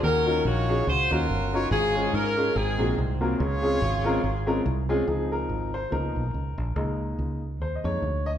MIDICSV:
0, 0, Header, 1, 4, 480
1, 0, Start_track
1, 0, Key_signature, -5, "major"
1, 0, Tempo, 420757
1, 39, Time_signature, 4, 2, 24, 8
1, 9561, End_track
2, 0, Start_track
2, 0, Title_t, "Horn section"
2, 0, Program_c, 0, 61
2, 42, Note_on_c, 0, 70, 107
2, 44, Note_on_c, 0, 61, 84
2, 45, Note_on_c, 0, 66, 92
2, 486, Note_off_c, 0, 70, 0
2, 506, Note_off_c, 0, 66, 0
2, 519, Note_on_c, 0, 73, 110
2, 520, Note_on_c, 0, 66, 84
2, 522, Note_on_c, 0, 65, 86
2, 953, Note_off_c, 0, 61, 0
2, 987, Note_off_c, 0, 65, 0
2, 987, Note_off_c, 0, 66, 0
2, 997, Note_off_c, 0, 73, 0
2, 1000, Note_on_c, 0, 72, 109
2, 1001, Note_on_c, 0, 65, 82
2, 1001, Note_on_c, 0, 66, 77
2, 1256, Note_off_c, 0, 66, 0
2, 1269, Note_off_c, 0, 72, 0
2, 1270, Note_on_c, 0, 66, 81
2, 1273, Note_on_c, 0, 70, 114
2, 1275, Note_on_c, 0, 61, 84
2, 1743, Note_on_c, 0, 73, 108
2, 1749, Note_off_c, 0, 70, 0
2, 1910, Note_off_c, 0, 66, 0
2, 1911, Note_off_c, 0, 65, 0
2, 1912, Note_off_c, 0, 61, 0
2, 1938, Note_off_c, 0, 73, 0
2, 1951, Note_on_c, 0, 68, 110
2, 1955, Note_on_c, 0, 65, 79
2, 1958, Note_on_c, 0, 61, 81
2, 2398, Note_off_c, 0, 68, 0
2, 2422, Note_off_c, 0, 61, 0
2, 2422, Note_off_c, 0, 65, 0
2, 2435, Note_on_c, 0, 61, 81
2, 2435, Note_on_c, 0, 70, 110
2, 2436, Note_on_c, 0, 65, 77
2, 2880, Note_off_c, 0, 61, 0
2, 2880, Note_off_c, 0, 65, 0
2, 2912, Note_on_c, 0, 68, 93
2, 2913, Note_off_c, 0, 70, 0
2, 2916, Note_on_c, 0, 60, 74
2, 2917, Note_on_c, 0, 63, 79
2, 3333, Note_off_c, 0, 68, 0
2, 3663, Note_on_c, 0, 73, 115
2, 3667, Note_on_c, 0, 68, 78
2, 3668, Note_on_c, 0, 65, 92
2, 3827, Note_off_c, 0, 60, 0
2, 3827, Note_off_c, 0, 63, 0
2, 5536, Note_off_c, 0, 73, 0
2, 5538, Note_off_c, 0, 65, 0
2, 5538, Note_off_c, 0, 68, 0
2, 9561, End_track
3, 0, Start_track
3, 0, Title_t, "Grand piano"
3, 0, Program_c, 1, 0
3, 33, Note_on_c, 1, 51, 73
3, 294, Note_on_c, 1, 61, 69
3, 300, Note_on_c, 1, 63, 62
3, 300, Note_on_c, 1, 65, 74
3, 301, Note_on_c, 1, 66, 64
3, 306, Note_on_c, 1, 70, 78
3, 447, Note_off_c, 1, 61, 0
3, 451, Note_off_c, 1, 63, 0
3, 451, Note_off_c, 1, 65, 0
3, 451, Note_off_c, 1, 66, 0
3, 453, Note_off_c, 1, 70, 0
3, 740, Note_off_c, 1, 51, 0
3, 780, Note_on_c, 1, 61, 75
3, 783, Note_on_c, 1, 63, 62
3, 787, Note_on_c, 1, 65, 67
3, 788, Note_on_c, 1, 66, 63
3, 793, Note_on_c, 1, 68, 83
3, 930, Note_off_c, 1, 61, 0
3, 931, Note_off_c, 1, 63, 0
3, 933, Note_off_c, 1, 65, 0
3, 934, Note_off_c, 1, 66, 0
3, 936, Note_off_c, 1, 68, 0
3, 1261, Note_on_c, 1, 61, 72
3, 1262, Note_on_c, 1, 63, 65
3, 1263, Note_on_c, 1, 65, 72
3, 1268, Note_on_c, 1, 66, 64
3, 1272, Note_on_c, 1, 70, 75
3, 1410, Note_off_c, 1, 61, 0
3, 1410, Note_off_c, 1, 63, 0
3, 1410, Note_off_c, 1, 65, 0
3, 1413, Note_off_c, 1, 66, 0
3, 1415, Note_off_c, 1, 70, 0
3, 1748, Note_on_c, 1, 61, 70
3, 1751, Note_on_c, 1, 65, 68
3, 1752, Note_on_c, 1, 63, 66
3, 1756, Note_on_c, 1, 66, 65
3, 1758, Note_on_c, 1, 70, 84
3, 1893, Note_off_c, 1, 61, 0
3, 1894, Note_off_c, 1, 65, 0
3, 1895, Note_off_c, 1, 63, 0
3, 1897, Note_off_c, 1, 66, 0
3, 1898, Note_off_c, 1, 70, 0
3, 1963, Note_on_c, 1, 44, 74
3, 2223, Note_on_c, 1, 56, 76
3, 2225, Note_on_c, 1, 61, 61
3, 2229, Note_on_c, 1, 65, 65
3, 2232, Note_on_c, 1, 68, 71
3, 2232, Note_on_c, 1, 73, 83
3, 2370, Note_off_c, 1, 56, 0
3, 2371, Note_off_c, 1, 61, 0
3, 2373, Note_off_c, 1, 65, 0
3, 2374, Note_off_c, 1, 68, 0
3, 2374, Note_off_c, 1, 73, 0
3, 2663, Note_off_c, 1, 44, 0
3, 2700, Note_on_c, 1, 56, 81
3, 2703, Note_on_c, 1, 61, 72
3, 2704, Note_on_c, 1, 65, 65
3, 2710, Note_on_c, 1, 68, 62
3, 2714, Note_on_c, 1, 73, 79
3, 2848, Note_off_c, 1, 56, 0
3, 2849, Note_off_c, 1, 61, 0
3, 2850, Note_off_c, 1, 65, 0
3, 2852, Note_off_c, 1, 68, 0
3, 2855, Note_off_c, 1, 73, 0
3, 2910, Note_on_c, 1, 44, 66
3, 3178, Note_on_c, 1, 58, 67
3, 3178, Note_on_c, 1, 60, 66
3, 3179, Note_on_c, 1, 65, 67
3, 3185, Note_on_c, 1, 66, 67
3, 3187, Note_on_c, 1, 68, 86
3, 3326, Note_off_c, 1, 58, 0
3, 3326, Note_off_c, 1, 60, 0
3, 3327, Note_off_c, 1, 65, 0
3, 3330, Note_off_c, 1, 66, 0
3, 3331, Note_off_c, 1, 68, 0
3, 3616, Note_off_c, 1, 44, 0
3, 3659, Note_on_c, 1, 58, 74
3, 3660, Note_on_c, 1, 60, 70
3, 3661, Note_on_c, 1, 65, 72
3, 3666, Note_on_c, 1, 66, 69
3, 3668, Note_on_c, 1, 70, 82
3, 3806, Note_off_c, 1, 58, 0
3, 3807, Note_off_c, 1, 60, 0
3, 3807, Note_off_c, 1, 65, 0
3, 3810, Note_off_c, 1, 66, 0
3, 3811, Note_off_c, 1, 70, 0
3, 3863, Note_on_c, 1, 49, 73
3, 4130, Note_on_c, 1, 56, 68
3, 4136, Note_on_c, 1, 60, 65
3, 4140, Note_on_c, 1, 65, 62
3, 4141, Note_on_c, 1, 61, 73
3, 4146, Note_on_c, 1, 68, 76
3, 4282, Note_off_c, 1, 56, 0
3, 4284, Note_off_c, 1, 60, 0
3, 4287, Note_off_c, 1, 61, 0
3, 4287, Note_off_c, 1, 65, 0
3, 4290, Note_off_c, 1, 68, 0
3, 4572, Note_off_c, 1, 49, 0
3, 4613, Note_on_c, 1, 56, 87
3, 4615, Note_on_c, 1, 60, 81
3, 4618, Note_on_c, 1, 61, 69
3, 4624, Note_on_c, 1, 65, 81
3, 4628, Note_on_c, 1, 70, 95
3, 4763, Note_off_c, 1, 56, 0
3, 4764, Note_off_c, 1, 60, 0
3, 4765, Note_off_c, 1, 61, 0
3, 4768, Note_off_c, 1, 65, 0
3, 4770, Note_off_c, 1, 70, 0
3, 5092, Note_on_c, 1, 56, 78
3, 5096, Note_on_c, 1, 60, 79
3, 5098, Note_on_c, 1, 61, 75
3, 5102, Note_on_c, 1, 65, 74
3, 5103, Note_on_c, 1, 70, 92
3, 5242, Note_off_c, 1, 56, 0
3, 5244, Note_off_c, 1, 60, 0
3, 5245, Note_off_c, 1, 61, 0
3, 5247, Note_off_c, 1, 65, 0
3, 5248, Note_off_c, 1, 70, 0
3, 5579, Note_on_c, 1, 56, 91
3, 5582, Note_on_c, 1, 60, 75
3, 5586, Note_on_c, 1, 61, 79
3, 5586, Note_on_c, 1, 65, 82
3, 5590, Note_on_c, 1, 68, 96
3, 5726, Note_off_c, 1, 56, 0
3, 5727, Note_off_c, 1, 60, 0
3, 5729, Note_off_c, 1, 61, 0
3, 5729, Note_off_c, 1, 65, 0
3, 5731, Note_off_c, 1, 68, 0
3, 5783, Note_on_c, 1, 53, 60
3, 5789, Note_on_c, 1, 60, 51
3, 5792, Note_on_c, 1, 68, 83
3, 5798, Note_on_c, 1, 63, 63
3, 6068, Note_on_c, 1, 70, 89
3, 6071, Note_off_c, 1, 68, 0
3, 6501, Note_off_c, 1, 53, 0
3, 6504, Note_off_c, 1, 60, 0
3, 6508, Note_off_c, 1, 63, 0
3, 6549, Note_on_c, 1, 72, 90
3, 6559, Note_off_c, 1, 70, 0
3, 6736, Note_on_c, 1, 53, 52
3, 6742, Note_on_c, 1, 58, 46
3, 6744, Note_on_c, 1, 59, 44
3, 6752, Note_on_c, 1, 63, 58
3, 6755, Note_on_c, 1, 70, 84
3, 6760, Note_off_c, 1, 72, 0
3, 7081, Note_off_c, 1, 53, 0
3, 7084, Note_off_c, 1, 58, 0
3, 7085, Note_off_c, 1, 59, 0
3, 7089, Note_off_c, 1, 63, 0
3, 7709, Note_on_c, 1, 56, 63
3, 7712, Note_on_c, 1, 58, 53
3, 7722, Note_on_c, 1, 63, 63
3, 7941, Note_off_c, 1, 70, 0
3, 8427, Note_off_c, 1, 56, 0
3, 8428, Note_off_c, 1, 58, 0
3, 8433, Note_off_c, 1, 63, 0
3, 8688, Note_on_c, 1, 72, 80
3, 8846, Note_on_c, 1, 75, 59
3, 8869, Note_off_c, 1, 72, 0
3, 8936, Note_on_c, 1, 56, 41
3, 8939, Note_on_c, 1, 58, 40
3, 8942, Note_off_c, 1, 75, 0
3, 8945, Note_on_c, 1, 63, 46
3, 8955, Note_on_c, 1, 73, 90
3, 9129, Note_off_c, 1, 56, 0
3, 9131, Note_off_c, 1, 58, 0
3, 9134, Note_off_c, 1, 63, 0
3, 9425, Note_on_c, 1, 75, 88
3, 9448, Note_off_c, 1, 73, 0
3, 9482, Note_off_c, 1, 75, 0
3, 9561, End_track
4, 0, Start_track
4, 0, Title_t, "Fingered electric bass"
4, 0, Program_c, 2, 33
4, 36, Note_on_c, 2, 39, 98
4, 444, Note_off_c, 2, 39, 0
4, 513, Note_on_c, 2, 34, 102
4, 922, Note_off_c, 2, 34, 0
4, 993, Note_on_c, 2, 37, 99
4, 1225, Note_off_c, 2, 37, 0
4, 1270, Note_on_c, 2, 39, 73
4, 1446, Note_off_c, 2, 39, 0
4, 1474, Note_on_c, 2, 31, 92
4, 1882, Note_off_c, 2, 31, 0
4, 1951, Note_on_c, 2, 32, 109
4, 2359, Note_off_c, 2, 32, 0
4, 2433, Note_on_c, 2, 44, 89
4, 2840, Note_off_c, 2, 44, 0
4, 2917, Note_on_c, 2, 32, 95
4, 3145, Note_off_c, 2, 32, 0
4, 3183, Note_on_c, 2, 34, 79
4, 3360, Note_off_c, 2, 34, 0
4, 3398, Note_on_c, 2, 36, 84
4, 3802, Note_off_c, 2, 36, 0
4, 3880, Note_on_c, 2, 37, 103
4, 4283, Note_off_c, 2, 37, 0
4, 4356, Note_on_c, 2, 32, 106
4, 4761, Note_off_c, 2, 32, 0
4, 4833, Note_on_c, 2, 32, 92
4, 5239, Note_off_c, 2, 32, 0
4, 5312, Note_on_c, 2, 36, 99
4, 5719, Note_off_c, 2, 36, 0
4, 5790, Note_on_c, 2, 37, 94
4, 6198, Note_off_c, 2, 37, 0
4, 6267, Note_on_c, 2, 32, 86
4, 6677, Note_off_c, 2, 32, 0
4, 6754, Note_on_c, 2, 37, 99
4, 6984, Note_off_c, 2, 37, 0
4, 7024, Note_on_c, 2, 35, 71
4, 7201, Note_off_c, 2, 35, 0
4, 7234, Note_on_c, 2, 37, 73
4, 7464, Note_off_c, 2, 37, 0
4, 7503, Note_on_c, 2, 34, 86
4, 7681, Note_off_c, 2, 34, 0
4, 7711, Note_on_c, 2, 37, 96
4, 8120, Note_off_c, 2, 37, 0
4, 8198, Note_on_c, 2, 37, 81
4, 8674, Note_off_c, 2, 37, 0
4, 8674, Note_on_c, 2, 39, 86
4, 8906, Note_off_c, 2, 39, 0
4, 8946, Note_on_c, 2, 41, 74
4, 9124, Note_off_c, 2, 41, 0
4, 9152, Note_on_c, 2, 38, 74
4, 9561, Note_off_c, 2, 38, 0
4, 9561, End_track
0, 0, End_of_file